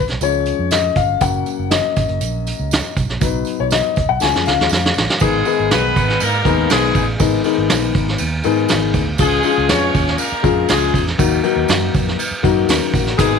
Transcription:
0.08 B1, snare, closed hi-hat
0.21 C#2 F3 G#3 C#4 C#5, closed hi-hat, tambourine
0.46 closed hi-hat, tambourine
0.59 F2
0.71 D#5, snare, closed hi-hat, tambourine
0.95 G1 F5, kick, closed hi-hat, tambourine
1.21 F#1 F#3 A#3 C#4 F#5, kick, closed hi-hat, tambourine
1.46 closed hi-hat, tambourine
1.59 F#1
1.71 D#5, snare, closed hi-hat, tambourine
1.96 G#1, kick, closed hi-hat, tambourine
2.08 F#1, closed hi-hat
2.21 A#1, closed hi-hat, tambourine
2.47 closed hi-hat, tambourine
2.60 C#2
2.71 snare, closed hi-hat, tambourine
2.96 B1, kick, closed hi-hat, tambourine
3.09 A#1, snare
3.20 B1 F#3 B3 D#4 B4, kick, closed hi-hat, tambourine
3.45 closed hi-hat, tambourine
3.60 B1 C#5
3.71 D#5, snare, closed hi-hat, tambourine
3.96 C#2, kick, closed hi-hat, tambourine
4.09 B1 F#5
4.20 C#2 F3 G#3 C#4 G#5, snare, tambourine
4.34 F2, snare
4.46 C#2 F5, snare, tambourine
4.59 D#2, snare
4.69 F2 F5, snare, tambourine
4.86 snare
4.94 A1, snare, tambourine
5.10 snare
5.20 G#1 D#3 G#3 B3 D#4 G#4, kick, ride, tambourine
5.45 D#3 G#3 B3 D#4 G#4, ride, tambourine
5.60 G#1
5.71 B1 B3 B4, snare, ride, tambourine
5.96 G#1, kick, ride, tambourine
6.08 snare, ride
6.20 G#2 A#3 A#4, ride, tambourine
6.45 D#2 D#3 G#3 B3 D#4 G#4, kick, ride, tambourine
6.58 ride
6.70 B1 G#3 G#4, snare, ride, tambourine
6.95 A1, kick, ride, tambourine
7.19 G#1 D#3 G#3 B3 D#4 G#4, kick, ride, tambourine
7.44 D#3 G#3 B3 D#4 G#4, ride, tambourine
7.58 G#1
7.69 A#1, snare, ride, tambourine
7.94 G#1, kick, ride, tambourine
8.08 snare
8.18 D#2, ride, tambourine
8.44 G#2 D#3 G#3 B3 D#4 G#4, ride, tambourine
8.57 ride
8.69 G#1, snare, ride, tambourine
8.93 D2, kick, ride, tambourine
9.18 C#2 F3 G#3 C#4 F4 G#4, kick, ride, tambourine
9.43 F3 G#3 C#4 D#4 G#4, ride, tambourine
9.49 F4
9.58 C#2
9.69 F2 C#4 C#5, snare, ride, tambourine
9.95 D#2, kick, ride, tambourine
10.07 snare
10.18 A#3 A#4, ride, tambourine
10.32 muted fingered electric bass stroke
10.43 F2 F3 G#3 C#4 F4 G#4, kick, ride, tambourine
10.68 C#2 G#3 G#4, snare, ride, tambourine
10.94 E2, kick, ride, tambourine
11.07 snare
11.18 D#2 D#3 F#3 A#3 D#4 F#4, kick, ride, tambourine
11.43 D#3 F#3 A#3 D#4 F#4, ride, tambourine
11.56 D#2
11.68 F#2, snare, ride, tambourine
11.94 F2, kick, ride, tambourine
12.08 snare
12.19 ride, tambourine
12.31 muted fingered electric bass stroke
12.43 F#2 D#3 F#3 A#3 D#4 F#4, kick, ride, tambourine
12.69 D#2 C#4 A#4, snare, ride, tambourine
12.93 A1 A#3 F#4, kick, open hi-hat, ride, tambourine
13.07 snare
13.17 G#1 D#3 G#3 B3 D#4 G#4, kick, hi-hat pedal, ride, tambourine

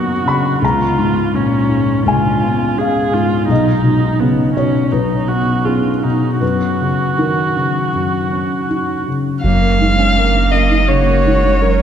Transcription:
Already playing: F#2 C#3 D#3 A#3 B3 F#4 A#5
0.25 C#3 B5
0.62 C#2 F4 A#5
0.98 G#2
1.34 A#2 C#4
1.69 G#2
2.06 C#2 F4 G#5
2.42 B3
2.77 C#4 G#4 F5
3.13 G#2 F4
3.48 B1 D#4 D#5
3.84 B2
4.20 C#3 B3
4.55 B2 C#4 C#5
4.92 B1 D#4 B4
5.28 B3 F#4
5.65 C#4 F4 G#4
6.04 B2 D#4
6.41 F#2 F#4 B4
6.80 C#3
7.18 D#3 A#4
7.56 C#3
7.94 F#2
8.32 C#4
8.69 D#4
9.07 C#3
9.43 F#1 F#2 A#3 F5
9.62 A#4
9.79 G#3 D#4
9.99 C#4
10.16 A#3 A#4
10.34 C#4
10.51 A#4 D#5
10.70 D#4
10.88 C#3 A#3 F#4 C#5
11.06 A#4
11.26 G#3 D#4
11.44 C#4
11.61 F#3 A#4

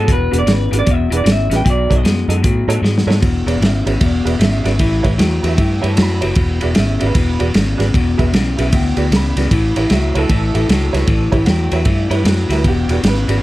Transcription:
0.07 E1 E2 B2, kick, closed hi-hat
0.12 B4
0.31 E1 E2 B2 D4 F#4 G#4 B4, closed hi-hat
0.39 D5
0.46 G#1 E2 C#3, snare, closed hi-hat
0.52 B4
0.71 G#1 E2 C#3 D4 F#4 G#4 B4, closed hi-hat
0.79 D5
0.85 E1 E2 B2, kick, closed hi-hat
0.91 E5
1.10 E1 E2 B2 D4 F#4 G#4 B4, closed hi-hat
1.17 D5
1.24 G#1 E2 C#3, snare, closed hi-hat
1.32 E5
1.49 A1 E2 C#3 D4 F#4 G#4 B4, snare, closed hi-hat
1.56 G5
1.64 B1 B2 F#3, kick, closed hi-hat
1.70 D5
1.89 B1 B2 F#3 D#4 F#4 A4 C#5, kick, closed hi-hat
1.95 D#5
2.04 F#2 B2 G#3, snare, closed hi-hat
2.28 F#2 B2 G#3 D#4 F#4 A4 D#5, closed hi-hat
2.43 A2 B2 F#3, kick, closed hi-hat
2.68 A2 B2 F#3 D#4 F#4 A4 C#5, closed hi-hat
2.82 G#2 B2 G#3, snare
2.98 snare
3.07 G#2 B2 G#3 D#4 F#4 A4 C#5
3.11 snare
3.21 E1 E2 B2, kick, ride
3.46 E1 E2 B2 F#4 G#4 B4 D5, ride
3.52 D5
3.60 G#1 E2 C#3, snare, ride
3.66 E5
3.86 G#1 E2 C#3 F#4 G#4 B4 C#5, ride
4.01 E1 E2 B2, kick, ride
4.05 D5
4.25 E1 E2 B2 F#4 G#4 B4 D5, ride
4.30 E5
4.39 G#1 E2 C#3, snare, ride
4.44 E5
4.64 G#1 E2 C#3 F#4 G#4 B4 D5, snare, ride
4.79 A1 A2 E3, kick, ride
5.03 A1 A2 E3 E4 G4 B4 C#5, kick, ride
5.18 E2 A2 F#3, snare, ride
5.43 E2 A2 F#3 E4 G4 B4 E5, ride
5.48 E5
5.57 G2 A2 E3, kick, ride
5.61 G5
5.81 G2 A2 E3 E4 G4 B4 C#5, ride
5.89 A5
5.97 F#2 A2 F#3 A#5, snare, ride
6.02 B5
6.20 F#1 A2 F#3 E4 G4 B4 C#5, ride
6.35 E1 E2 B2, kick, ride
6.61 E1 E2 B2 F#4 G#4 B4 D5, ride
6.65 E5
6.75 G#1 E2 C#3, snare, ride
6.79 E5
6.99 G#1 E2 C#3 F#4 G#4 B4 D5, ride
7.06 B4
7.14 E1 E2 B2, kick, ride
7.39 E1 E2 B2 F#4 G#4 B4 D5, ride
7.54 G#1 E2 C#3, snare, ride
7.77 G#1 E2 C#3 F#4 G#4 B4 D5, snare, ride
7.94 E1 E2 B2, kick, ride
8.18 E1 E2 B2 F#4 G#4 B4 E5, kick, ride
8.32 B1 E2 C#3, snare, ride
8.57 B1 E2 C#3 F#4 G#4 B4 E5, ride
8.62 E5
8.73 D2 E2 B2 G5, kick, ride
8.96 D2 E2 B2 F#4 G#4 B4 D5, ride
9.02 G5
9.11 C#2 E2 C#3 A#5, snare, ride
9.16 B5
9.36 C#2 E2 C#3 F#4 G#4 B4 D5, snare, ride
9.51 A1 A2 E3, kick, ride
9.76 A1 A2 E3 E4 G4 B4 C#5 E5, ride
9.90 C#2 A2 F#3 E5, snare, ride
10.15 C#2 A2 F#3 E4 G4 B4 C#5, ride
10.19 A4
10.29 A1 A2 E3, kick, ride
10.54 A1 A2 E3 E4 G4 B4 E5, ride
10.69 C#2 A2 F#3, snare, ride
10.93 C#2 A2 F#3 E4 G4 B4 C#5, snare, ride
11.07 A1 A2 E3, kick, ride
11.32 A1 A2 E3 E4 G4 B4 C#5, kick, ride
11.45 E2 A2 F#3 F#5 G5, snare, ride
11.72 E2 A2 F#3 E4 G4 B4 C#5 E5, ride
11.85 G2 A2 E3, kick, ride
12.10 G2 A2 E3 E4 G4 B4 C#5, ride
12.15 B4
12.24 F#2 A2 F#3, snare, ride
12.49 D2 A2 F#3 E4 G4 B4 E5, snare, ride
12.55 B4
12.64 E1 E2 B2, kick, ride
12.68 G4
12.89 E1 E2 B2 F#4 G#4 B4 D5, ride
13.03 G#1 E2 C#3, snare, ride
13.08 B4
13.28 G#1 E2 C#3 F#4 G#4 B4 D5, ride

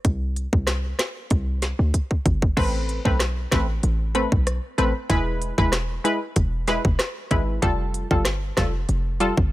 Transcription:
0.05 C2, kick, closed hi-hat
0.36 closed hi-hat
0.53 C2, kick
0.67 cross-stick, snare, closed hi-hat
0.99 cross-stick, snare, closed hi-hat
1.30 C2, kick, closed hi-hat
1.62 snare, closed hi-hat
1.79 D2
1.94 kick, closed hi-hat
2.11 kick
2.26 G1, kick, closed hi-hat
2.42 kick
2.57 A1 A3 C4 B4, kick, crash
2.89 closed hi-hat
3.05 B1 A3 C4 B4, kick
3.19 cross-stick, snare, closed hi-hat
3.51 A1 A3 C4 B4, kick, cross-stick, snare, closed hi-hat
3.83 A1, closed hi-hat
4.15 A3 C4 B4, closed hi-hat
4.32 B1, kick
4.47 cross-stick, closed hi-hat
4.78 A1 A3 C4 B4, closed hi-hat
5.09 E1 G#3 E4 B4, kick, closed hi-hat
5.42 closed hi-hat
5.58 E1 G#3 E4 B4, kick
5.72 cross-stick, snare, closed hi-hat
6.04 G#3 E4 B4, closed hi-hat
6.36 E1, kick, closed hi-hat
6.67 G#3 E4 B4, snare, closed hi-hat
6.85 F1, kick
6.99 cross-stick, snare, closed hi-hat
7.31 G#1 G#3 E4 B4, kick, closed hi-hat
7.62 F1 G3 F4 A4, kick, closed hi-hat
7.94 closed hi-hat
8.11 G1 G3 F4 A4, kick
8.25 cross-stick, snare, closed hi-hat
8.57 F1 G3 F4 A4, kick, cross-stick, snare, closed hi-hat
8.89 F1, closed hi-hat
9.20 G3 F4 A4, closed hi-hat
9.37 G1, kick

